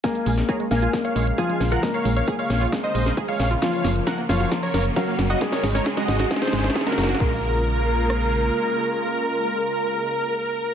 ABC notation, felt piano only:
X:1
M:4/4
L:1/8
Q:1/4=134
K:Bbm
V:1 name="Felt piano"
[B,B]3 [B,B]3 [F,F]2 | [B,B]8 | [F,F]3 [F,F]3 [G,G]2 | [A,A]8 |
B8- | B8 |]